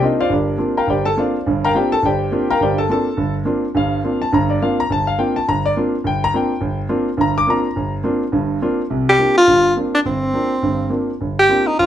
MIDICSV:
0, 0, Header, 1, 3, 480
1, 0, Start_track
1, 0, Tempo, 286807
1, 1481, Time_signature, 4, 2, 24, 8
1, 19849, End_track
2, 0, Start_track
2, 0, Title_t, "Tenor saxophone"
2, 0, Program_c, 0, 66
2, 15212, Note_on_c, 0, 67, 97
2, 15653, Note_off_c, 0, 67, 0
2, 15689, Note_on_c, 0, 65, 101
2, 16313, Note_off_c, 0, 65, 0
2, 16646, Note_on_c, 0, 62, 71
2, 16732, Note_off_c, 0, 62, 0
2, 16838, Note_on_c, 0, 60, 82
2, 18499, Note_off_c, 0, 60, 0
2, 19062, Note_on_c, 0, 67, 103
2, 19527, Note_on_c, 0, 63, 90
2, 19552, Note_off_c, 0, 67, 0
2, 19722, Note_off_c, 0, 63, 0
2, 19729, Note_on_c, 0, 65, 93
2, 19849, Note_off_c, 0, 65, 0
2, 19849, End_track
3, 0, Start_track
3, 0, Title_t, "Grand piano"
3, 0, Program_c, 1, 0
3, 30, Note_on_c, 1, 60, 58
3, 36, Note_on_c, 1, 58, 59
3, 42, Note_on_c, 1, 62, 55
3, 48, Note_on_c, 1, 65, 65
3, 60, Note_on_c, 1, 75, 73
3, 83, Note_on_c, 1, 63, 55
3, 320, Note_off_c, 1, 65, 0
3, 328, Note_off_c, 1, 75, 0
3, 340, Note_off_c, 1, 63, 0
3, 341, Note_off_c, 1, 60, 0
3, 343, Note_on_c, 1, 72, 77
3, 343, Note_on_c, 1, 77, 95
3, 344, Note_off_c, 1, 58, 0
3, 345, Note_on_c, 1, 65, 80
3, 346, Note_on_c, 1, 74, 78
3, 347, Note_off_c, 1, 62, 0
3, 494, Note_on_c, 1, 31, 69
3, 516, Note_off_c, 1, 74, 0
3, 524, Note_off_c, 1, 72, 0
3, 524, Note_off_c, 1, 77, 0
3, 525, Note_off_c, 1, 65, 0
3, 541, Note_on_c, 1, 74, 58
3, 546, Note_on_c, 1, 70, 43
3, 548, Note_on_c, 1, 62, 52
3, 549, Note_on_c, 1, 67, 45
3, 917, Note_off_c, 1, 31, 0
3, 942, Note_off_c, 1, 62, 0
3, 967, Note_on_c, 1, 62, 53
3, 971, Note_on_c, 1, 60, 49
3, 972, Note_on_c, 1, 58, 58
3, 982, Note_on_c, 1, 65, 58
3, 1244, Note_off_c, 1, 74, 0
3, 1246, Note_off_c, 1, 70, 0
3, 1248, Note_off_c, 1, 67, 0
3, 1289, Note_off_c, 1, 62, 0
3, 1291, Note_off_c, 1, 60, 0
3, 1292, Note_off_c, 1, 58, 0
3, 1296, Note_on_c, 1, 82, 86
3, 1297, Note_off_c, 1, 65, 0
3, 1298, Note_on_c, 1, 79, 76
3, 1302, Note_on_c, 1, 70, 70
3, 1304, Note_on_c, 1, 77, 77
3, 1459, Note_on_c, 1, 31, 69
3, 1476, Note_off_c, 1, 79, 0
3, 1480, Note_off_c, 1, 82, 0
3, 1483, Note_off_c, 1, 70, 0
3, 1484, Note_off_c, 1, 77, 0
3, 1502, Note_on_c, 1, 79, 74
3, 1507, Note_on_c, 1, 67, 64
3, 1508, Note_on_c, 1, 74, 68
3, 1509, Note_on_c, 1, 72, 58
3, 1765, Note_on_c, 1, 81, 102
3, 1769, Note_off_c, 1, 79, 0
3, 1772, Note_off_c, 1, 67, 0
3, 1772, Note_off_c, 1, 74, 0
3, 1772, Note_on_c, 1, 69, 87
3, 1773, Note_off_c, 1, 72, 0
3, 1879, Note_off_c, 1, 31, 0
3, 1954, Note_off_c, 1, 81, 0
3, 1958, Note_off_c, 1, 69, 0
3, 1964, Note_on_c, 1, 58, 59
3, 1964, Note_on_c, 1, 60, 52
3, 1972, Note_on_c, 1, 65, 68
3, 1973, Note_on_c, 1, 62, 56
3, 2000, Note_on_c, 1, 77, 61
3, 2004, Note_on_c, 1, 74, 55
3, 2009, Note_on_c, 1, 72, 51
3, 2267, Note_off_c, 1, 58, 0
3, 2267, Note_off_c, 1, 60, 0
3, 2271, Note_off_c, 1, 65, 0
3, 2272, Note_off_c, 1, 62, 0
3, 2447, Note_on_c, 1, 43, 69
3, 2456, Note_on_c, 1, 31, 73
3, 2694, Note_off_c, 1, 77, 0
3, 2696, Note_off_c, 1, 74, 0
3, 2699, Note_off_c, 1, 72, 0
3, 2754, Note_on_c, 1, 82, 108
3, 2760, Note_on_c, 1, 79, 82
3, 2764, Note_on_c, 1, 77, 89
3, 2766, Note_on_c, 1, 70, 93
3, 2854, Note_off_c, 1, 43, 0
3, 2859, Note_off_c, 1, 31, 0
3, 2915, Note_on_c, 1, 58, 53
3, 2918, Note_off_c, 1, 79, 0
3, 2925, Note_on_c, 1, 65, 68
3, 2929, Note_off_c, 1, 82, 0
3, 2933, Note_on_c, 1, 62, 50
3, 2934, Note_off_c, 1, 77, 0
3, 2934, Note_on_c, 1, 60, 55
3, 2935, Note_off_c, 1, 70, 0
3, 2943, Note_on_c, 1, 79, 83
3, 2950, Note_on_c, 1, 72, 64
3, 2954, Note_on_c, 1, 67, 63
3, 2962, Note_on_c, 1, 74, 56
3, 3209, Note_off_c, 1, 79, 0
3, 3213, Note_off_c, 1, 72, 0
3, 3215, Note_off_c, 1, 67, 0
3, 3218, Note_on_c, 1, 69, 74
3, 3218, Note_on_c, 1, 81, 103
3, 3219, Note_off_c, 1, 74, 0
3, 3223, Note_off_c, 1, 58, 0
3, 3228, Note_off_c, 1, 65, 0
3, 3232, Note_off_c, 1, 60, 0
3, 3232, Note_off_c, 1, 62, 0
3, 3390, Note_on_c, 1, 31, 70
3, 3400, Note_off_c, 1, 81, 0
3, 3401, Note_off_c, 1, 69, 0
3, 3439, Note_on_c, 1, 79, 83
3, 3444, Note_on_c, 1, 67, 68
3, 3445, Note_on_c, 1, 72, 56
3, 3446, Note_on_c, 1, 74, 64
3, 3804, Note_off_c, 1, 31, 0
3, 3877, Note_on_c, 1, 58, 63
3, 3886, Note_on_c, 1, 60, 55
3, 3888, Note_on_c, 1, 65, 67
3, 3891, Note_on_c, 1, 62, 55
3, 4133, Note_off_c, 1, 79, 0
3, 4135, Note_off_c, 1, 67, 0
3, 4136, Note_off_c, 1, 72, 0
3, 4136, Note_off_c, 1, 74, 0
3, 4183, Note_off_c, 1, 58, 0
3, 4188, Note_off_c, 1, 60, 0
3, 4189, Note_off_c, 1, 65, 0
3, 4191, Note_off_c, 1, 62, 0
3, 4191, Note_on_c, 1, 77, 76
3, 4192, Note_on_c, 1, 79, 86
3, 4192, Note_on_c, 1, 82, 101
3, 4194, Note_on_c, 1, 70, 82
3, 4359, Note_on_c, 1, 31, 64
3, 4360, Note_on_c, 1, 43, 69
3, 4361, Note_off_c, 1, 79, 0
3, 4367, Note_off_c, 1, 77, 0
3, 4367, Note_off_c, 1, 82, 0
3, 4368, Note_off_c, 1, 70, 0
3, 4386, Note_on_c, 1, 79, 78
3, 4398, Note_on_c, 1, 74, 69
3, 4401, Note_on_c, 1, 67, 63
3, 4402, Note_on_c, 1, 72, 62
3, 4650, Note_off_c, 1, 79, 0
3, 4656, Note_off_c, 1, 74, 0
3, 4658, Note_off_c, 1, 67, 0
3, 4658, Note_off_c, 1, 72, 0
3, 4658, Note_on_c, 1, 81, 92
3, 4662, Note_on_c, 1, 69, 75
3, 4769, Note_off_c, 1, 31, 0
3, 4770, Note_off_c, 1, 43, 0
3, 4840, Note_off_c, 1, 81, 0
3, 4840, Note_on_c, 1, 58, 58
3, 4842, Note_off_c, 1, 69, 0
3, 4850, Note_on_c, 1, 65, 62
3, 4855, Note_on_c, 1, 60, 50
3, 4857, Note_on_c, 1, 62, 53
3, 4880, Note_on_c, 1, 81, 85
3, 4885, Note_on_c, 1, 69, 67
3, 5145, Note_off_c, 1, 58, 0
3, 5149, Note_off_c, 1, 65, 0
3, 5152, Note_off_c, 1, 60, 0
3, 5153, Note_off_c, 1, 62, 0
3, 5308, Note_on_c, 1, 31, 75
3, 5573, Note_off_c, 1, 81, 0
3, 5575, Note_off_c, 1, 69, 0
3, 5723, Note_off_c, 1, 31, 0
3, 5772, Note_on_c, 1, 58, 66
3, 5781, Note_on_c, 1, 60, 52
3, 5783, Note_on_c, 1, 62, 55
3, 5801, Note_on_c, 1, 65, 65
3, 6090, Note_off_c, 1, 58, 0
3, 6095, Note_off_c, 1, 60, 0
3, 6096, Note_off_c, 1, 62, 0
3, 6105, Note_off_c, 1, 65, 0
3, 6270, Note_on_c, 1, 31, 78
3, 6273, Note_on_c, 1, 43, 73
3, 6307, Note_on_c, 1, 77, 92
3, 6684, Note_off_c, 1, 31, 0
3, 6686, Note_off_c, 1, 43, 0
3, 6763, Note_on_c, 1, 58, 52
3, 6768, Note_on_c, 1, 60, 52
3, 6769, Note_on_c, 1, 62, 48
3, 6775, Note_on_c, 1, 65, 63
3, 7005, Note_off_c, 1, 77, 0
3, 7055, Note_on_c, 1, 81, 83
3, 7065, Note_off_c, 1, 58, 0
3, 7068, Note_off_c, 1, 60, 0
3, 7069, Note_off_c, 1, 62, 0
3, 7072, Note_off_c, 1, 65, 0
3, 7236, Note_on_c, 1, 43, 79
3, 7238, Note_off_c, 1, 81, 0
3, 7240, Note_on_c, 1, 31, 79
3, 7267, Note_on_c, 1, 82, 98
3, 7530, Note_off_c, 1, 82, 0
3, 7531, Note_on_c, 1, 74, 80
3, 7647, Note_off_c, 1, 43, 0
3, 7649, Note_off_c, 1, 31, 0
3, 7716, Note_off_c, 1, 74, 0
3, 7731, Note_on_c, 1, 58, 64
3, 7738, Note_on_c, 1, 60, 55
3, 7740, Note_on_c, 1, 77, 83
3, 7746, Note_on_c, 1, 62, 55
3, 7748, Note_on_c, 1, 65, 68
3, 8006, Note_off_c, 1, 77, 0
3, 8029, Note_off_c, 1, 58, 0
3, 8032, Note_off_c, 1, 60, 0
3, 8034, Note_on_c, 1, 82, 112
3, 8037, Note_off_c, 1, 62, 0
3, 8038, Note_off_c, 1, 65, 0
3, 8198, Note_on_c, 1, 31, 72
3, 8207, Note_off_c, 1, 82, 0
3, 8237, Note_on_c, 1, 81, 93
3, 8490, Note_on_c, 1, 77, 95
3, 8495, Note_off_c, 1, 81, 0
3, 8608, Note_off_c, 1, 31, 0
3, 8675, Note_off_c, 1, 77, 0
3, 8677, Note_on_c, 1, 58, 62
3, 8677, Note_on_c, 1, 62, 51
3, 8680, Note_on_c, 1, 60, 52
3, 8681, Note_on_c, 1, 79, 83
3, 8692, Note_on_c, 1, 65, 65
3, 8956, Note_off_c, 1, 79, 0
3, 8974, Note_on_c, 1, 81, 88
3, 8982, Note_off_c, 1, 58, 0
3, 8982, Note_off_c, 1, 62, 0
3, 8984, Note_off_c, 1, 60, 0
3, 8989, Note_off_c, 1, 65, 0
3, 9157, Note_off_c, 1, 81, 0
3, 9176, Note_on_c, 1, 31, 69
3, 9182, Note_on_c, 1, 82, 110
3, 9447, Note_off_c, 1, 82, 0
3, 9465, Note_on_c, 1, 74, 106
3, 9575, Note_off_c, 1, 74, 0
3, 9577, Note_off_c, 1, 31, 0
3, 9649, Note_on_c, 1, 62, 56
3, 9652, Note_on_c, 1, 58, 61
3, 9661, Note_on_c, 1, 60, 55
3, 9661, Note_on_c, 1, 65, 68
3, 9947, Note_off_c, 1, 62, 0
3, 9949, Note_off_c, 1, 58, 0
3, 9954, Note_off_c, 1, 60, 0
3, 9954, Note_off_c, 1, 65, 0
3, 10113, Note_on_c, 1, 31, 73
3, 10153, Note_on_c, 1, 79, 93
3, 10412, Note_off_c, 1, 79, 0
3, 10444, Note_on_c, 1, 82, 127
3, 10525, Note_off_c, 1, 31, 0
3, 10604, Note_on_c, 1, 60, 59
3, 10606, Note_on_c, 1, 58, 58
3, 10609, Note_on_c, 1, 62, 50
3, 10612, Note_off_c, 1, 82, 0
3, 10612, Note_on_c, 1, 65, 60
3, 10646, Note_on_c, 1, 79, 77
3, 10905, Note_off_c, 1, 60, 0
3, 10906, Note_off_c, 1, 58, 0
3, 10907, Note_off_c, 1, 62, 0
3, 10909, Note_off_c, 1, 65, 0
3, 11059, Note_on_c, 1, 31, 72
3, 11334, Note_off_c, 1, 79, 0
3, 11476, Note_off_c, 1, 31, 0
3, 11531, Note_on_c, 1, 62, 57
3, 11535, Note_on_c, 1, 58, 67
3, 11536, Note_on_c, 1, 65, 75
3, 11542, Note_on_c, 1, 60, 61
3, 11848, Note_off_c, 1, 62, 0
3, 11850, Note_off_c, 1, 58, 0
3, 11850, Note_off_c, 1, 65, 0
3, 11853, Note_off_c, 1, 60, 0
3, 12005, Note_on_c, 1, 31, 69
3, 12009, Note_on_c, 1, 43, 76
3, 12067, Note_on_c, 1, 82, 102
3, 12328, Note_off_c, 1, 82, 0
3, 12345, Note_on_c, 1, 86, 126
3, 12429, Note_off_c, 1, 31, 0
3, 12431, Note_off_c, 1, 43, 0
3, 12503, Note_on_c, 1, 58, 62
3, 12509, Note_on_c, 1, 60, 52
3, 12515, Note_on_c, 1, 62, 55
3, 12521, Note_off_c, 1, 86, 0
3, 12524, Note_on_c, 1, 65, 72
3, 12554, Note_on_c, 1, 82, 96
3, 12814, Note_off_c, 1, 58, 0
3, 12817, Note_off_c, 1, 60, 0
3, 12819, Note_off_c, 1, 62, 0
3, 12824, Note_off_c, 1, 65, 0
3, 12990, Note_on_c, 1, 31, 69
3, 13247, Note_off_c, 1, 82, 0
3, 13402, Note_off_c, 1, 31, 0
3, 13450, Note_on_c, 1, 58, 64
3, 13450, Note_on_c, 1, 60, 60
3, 13461, Note_on_c, 1, 62, 61
3, 13465, Note_on_c, 1, 65, 69
3, 13767, Note_off_c, 1, 58, 0
3, 13767, Note_off_c, 1, 60, 0
3, 13772, Note_off_c, 1, 62, 0
3, 13774, Note_off_c, 1, 65, 0
3, 13929, Note_on_c, 1, 31, 69
3, 13936, Note_on_c, 1, 43, 76
3, 14351, Note_off_c, 1, 31, 0
3, 14354, Note_off_c, 1, 43, 0
3, 14426, Note_on_c, 1, 60, 60
3, 14427, Note_on_c, 1, 62, 61
3, 14431, Note_on_c, 1, 58, 62
3, 14436, Note_on_c, 1, 65, 72
3, 14735, Note_off_c, 1, 60, 0
3, 14736, Note_off_c, 1, 62, 0
3, 14737, Note_off_c, 1, 58, 0
3, 14740, Note_off_c, 1, 65, 0
3, 14899, Note_on_c, 1, 36, 63
3, 14900, Note_on_c, 1, 48, 61
3, 15316, Note_off_c, 1, 36, 0
3, 15317, Note_off_c, 1, 48, 0
3, 15366, Note_on_c, 1, 60, 46
3, 15370, Note_on_c, 1, 58, 52
3, 15370, Note_on_c, 1, 62, 49
3, 15370, Note_on_c, 1, 65, 57
3, 15686, Note_off_c, 1, 60, 0
3, 15687, Note_off_c, 1, 65, 0
3, 15688, Note_off_c, 1, 58, 0
3, 15688, Note_off_c, 1, 62, 0
3, 15851, Note_on_c, 1, 31, 64
3, 15858, Note_on_c, 1, 43, 62
3, 16273, Note_off_c, 1, 31, 0
3, 16277, Note_off_c, 1, 43, 0
3, 16345, Note_on_c, 1, 58, 51
3, 16348, Note_on_c, 1, 60, 47
3, 16349, Note_on_c, 1, 62, 43
3, 16355, Note_on_c, 1, 65, 55
3, 16656, Note_off_c, 1, 58, 0
3, 16657, Note_off_c, 1, 60, 0
3, 16658, Note_off_c, 1, 62, 0
3, 16661, Note_off_c, 1, 65, 0
3, 16820, Note_on_c, 1, 31, 60
3, 17238, Note_off_c, 1, 31, 0
3, 17299, Note_on_c, 1, 58, 50
3, 17302, Note_on_c, 1, 60, 51
3, 17311, Note_on_c, 1, 62, 51
3, 17316, Note_on_c, 1, 65, 55
3, 17614, Note_off_c, 1, 58, 0
3, 17615, Note_off_c, 1, 60, 0
3, 17620, Note_off_c, 1, 62, 0
3, 17622, Note_off_c, 1, 65, 0
3, 17782, Note_on_c, 1, 43, 65
3, 17784, Note_on_c, 1, 31, 57
3, 18201, Note_off_c, 1, 43, 0
3, 18202, Note_off_c, 1, 31, 0
3, 18238, Note_on_c, 1, 58, 53
3, 18246, Note_on_c, 1, 60, 47
3, 18256, Note_on_c, 1, 62, 45
3, 18264, Note_on_c, 1, 65, 51
3, 18564, Note_off_c, 1, 58, 0
3, 18568, Note_off_c, 1, 60, 0
3, 18574, Note_off_c, 1, 62, 0
3, 18577, Note_off_c, 1, 65, 0
3, 18757, Note_on_c, 1, 31, 64
3, 19169, Note_off_c, 1, 31, 0
3, 19229, Note_on_c, 1, 58, 54
3, 19242, Note_on_c, 1, 65, 62
3, 19250, Note_on_c, 1, 60, 50
3, 19254, Note_on_c, 1, 62, 48
3, 19541, Note_off_c, 1, 58, 0
3, 19548, Note_off_c, 1, 65, 0
3, 19551, Note_off_c, 1, 60, 0
3, 19554, Note_off_c, 1, 62, 0
3, 19732, Note_on_c, 1, 31, 59
3, 19849, Note_off_c, 1, 31, 0
3, 19849, End_track
0, 0, End_of_file